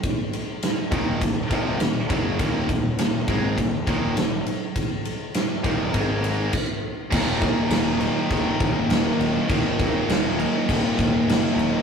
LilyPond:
<<
  \new Staff \with { instrumentName = "Distorted electric guitar" } { \clef bass \time 4/4 \key ees \minor \tempo 4 = 101 r4. <ees, bes, ees>8 <ees, bes,>8 <f, c f>8 <ees, bes,>8 <ges, des ges>8 | <ees, bes, ees>8 <ees, bes,>8 <ees, bes,>8 <aes, ees aes>8 <ees, bes,>8 <ees, bes, ees>8 <ees, bes,>8 r8 | r4. <ees, bes, ees>8 <aes, ees aes>4 r4 | <ees, bes, ees>1 |
<ees, bes, ees>1 | }
  \new Staff \with { instrumentName = "Picked electric bass" } { \clef bass \time 4/4 \key ees \minor r4. ees,,8 ees,,8 f,,8 ees,,8 ges,,8 | ees,,8 ees,,8 ees,,8 aes,,8 ees,,8 ees,,8 ees,,8 r8 | r4. ees,,8 aes,,4 r4 | ees,,4 ees,,4 ees,,8 ees,,8 ees,,8 ees,,8 |
ees,,8 ees,,8 ees,,4 ees,,8 ees,,8 ges,,8 ees,,8 | }
  \new DrumStaff \with { instrumentName = "Drums" } \drummode { \time 4/4 <bd cymr>8 cymr8 <cymr sn>8 <bd cymr>8 <bd cymr>8 <bd cymr>8 <cymr sn>8 <bd cymr>8 | <bd cymr>8 <bd cymr>8 <cymr sn>8 <bd cymr>8 <bd cymr>8 <bd cymr>8 <cymr sn>8 cymr8 | <bd cymr>8 cymr8 <cymr sn>8 <bd cymr>8 <bd cymr>8 cymr8 <cymc bd>4 | <cymc bd>8 <cymc bd>8 <cymc sn>8 cymc8 <cymc bd>8 <cymc bd>8 <cymc sn>8 cymc8 |
<cymc bd>8 <cymc bd>8 <cymc sn>8 cymc8 <cymc bd>8 <cymc bd>8 <cymc sn>8 cymc8 | }
>>